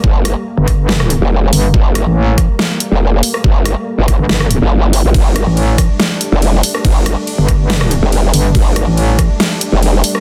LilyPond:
<<
  \new Staff \with { instrumentName = "Supersaw synth" } { \time 4/4 \key g \minor \tempo 4 = 141 << { bes1~ | bes1~ | bes1 | d'1~ |
d'1~ | d'1 | } \\ { <g a>1~ | <g a>1~ | <g a>1~ | <g a>1~ |
<g a>1~ | <g a>1 | } >> }
  \new Staff \with { instrumentName = "Wobble bass" } { \clef bass \time 4/4 \key g \minor g,,8. r2 f,,8. r8 | g,,8. r2 f,,8. r8 | g,,8. r8 g,,8 r4 g,,4 a,,16 | g,,8. r2 f,,8. r8 |
g,,8. r2 f,,8. r8 | g,,8. r2 f,,8. r8 | }
  \new Staff \with { instrumentName = "Wobble bass" } { \clef bass \time 4/4 \key g \minor r4 r16 g,,4. r8. g,,8 | r8. a,,4 r2 r16 | r4. r16 g,,4 r4 r16 | r8. a,,4 r2 r16 |
r4 r16 g,,4. r8. g,,8 | r8. a,,4 r2 r16 | }
  \new DrumStaff \with { instrumentName = "Drums" } \drummode { \time 4/4 bd8 <hh ss>8 r8 <hh bd ss>8 sn16 ss16 hh8 r8 hho8 | bd8 <hh ss>8 r8 <hh bd ss>8 sn8 hh8 r8 hho16 ss16 | bd8 <hh ss>8 r8 <hh bd ss>8 sn16 ss16 hh8 r8 hho8 | <bd cymr>8 <hh ss>8 cymr8 <hh bd ss>8 <cymr sn>8 hh8 cymr8 hho16 ss16 |
<bd cymr>8 <hh ss>8 cymr8 <hh bd ss>8 <cymr sn>16 ss16 hh8 cymr8 hho8 | <bd cymr>8 <hh ss>8 cymr8 <hh bd ss>8 <cymr sn>8 hh8 cymr8 hho16 ss16 | }
>>